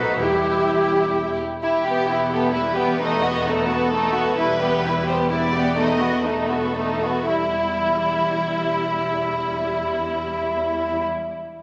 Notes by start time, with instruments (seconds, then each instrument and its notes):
Already playing: double bass section B1, cello section B2, french horn section A3 D#4, violin section D#4 A4 B4, viola section F#4, clarinet B4, flute B4
0.21 double bass section E1, cello section E2, french horn section G3 E4, viola section E4, violin section E4 G4, clarinet G4, flute G4
1.63 double bass section E1, cello section E2, violin section E4 G4
1.86 violin section B3 G4
2.09 viola section B3, violin section E4
2.32 violin section B3 G4 A4
2.53 viola section G3, violin section E4 B4
2.76 violin section B3 G4
3.00 violin section A3 D#4 D#5, viola section B3
3.22 violin section B3 F#4
3.47 violin section A3 D#4 A4
3.69 violin section B3 F#4
3.93 viola section A3, violin section A3 D#4
4.15 violin section B3 F#4
4.38 double bass section E1, cello section E2, viola section G3, violin section E4 B4
4.62 violin section B3 G4
4.86 violin section E4
5.08 violin section B3 G4 C5
5.30 viola section B3, violin section E4 D5
5.53 violin section B3 G4
5.77 violin section A3 D#4 D#5, viola section B3
6.02 violin section B3 F#4
6.26 viola section A3, violin section A3 D#4 A4
6.51 violin section B3 F#4
6.76 violin section A3 D#4, viola section B3
7.03 violin section B3 F#4
7.27 double bass section E1, cello section E2, viola section G3, violin section E4